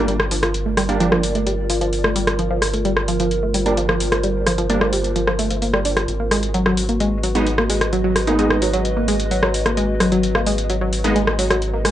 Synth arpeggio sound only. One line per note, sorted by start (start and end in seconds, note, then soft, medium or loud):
0.08 0.15 G3 loud
0.31 0.38 F3 loud
0.43 0.53 F3 loud
0.66 0.76 A3 medium
0.77 0.84 G3 loud
1.00 1.07 F3 loud
1.12 1.22 F3 loud
1.35 1.45 A3 medium
1.47 1.53 G3 loud
1.70 1.77 F3 loud
1.81 1.92 F3 loud
2.04 2.15 A3 medium
2.16 2.23 G3 loud
2.39 2.46 F3 loud
2.51 2.61 F3 loud
2.74 2.84 A3 medium
2.85 2.92 G3 loud
3.08 3.15 F3 loud
3.20 3.30 F3 loud
3.43 3.53 A3 medium
3.54 3.61 G3 loud
3.77 3.84 F3 loud
3.89 3.99 F3 loud
4.12 4.22 A3 medium
4.24 4.30 G3 loud
4.47 4.54 F3 loud
4.58 4.68 F3 loud
4.81 4.92 A3 medium
4.93 5.00 G3 loud
5.16 5.23 F3 loud
5.27 5.38 F3 loud
5.39 5.46 A3 loud
5.51 5.57 F3 medium
5.62 5.69 A#3 medium
5.74 5.80 G3 loud
5.85 5.89 D4 medium
5.97 6.07 G3 medium
6.20 6.30 A#3 medium
6.31 6.38 G#3 loud
6.54 6.61 F#3 loud
6.66 6.76 F#3 loud
6.89 6.99 A#3 medium
7.00 7.07 G#3 loud
7.24 7.30 F#3 loud
7.35 7.45 F#3 loud
7.58 7.68 A#3 medium
7.70 7.77 G#3 loud
7.93 8.00 F#3 loud
8.04 8.15 F#3 loud
8.27 8.38 A#3 medium
8.39 8.46 G#3 loud
8.62 8.69 F#3 loud
8.74 8.84 F#3 loud
8.97 9.07 A#3 medium
9.08 9.15 G#3 loud
9.31 9.38 F#3 loud
9.43 9.53 F#3 loud
9.66 9.76 A#3 medium
9.77 9.84 G#3 loud
10.00 10.07 F#3 loud
10.12 10.22 F#3 loud
10.35 10.45 A#3 medium
10.46 10.53 G#3 loud
10.70 10.77 F#3 loud
10.81 10.91 F#3 loud
11.04 11.14 A#3 medium
11.16 11.23 G#3 loud
11.39 11.46 F#3 loud
11.50 11.61 F#3 loud
11.73 11.84 A#3 medium
11.85 11.91 G#3 loud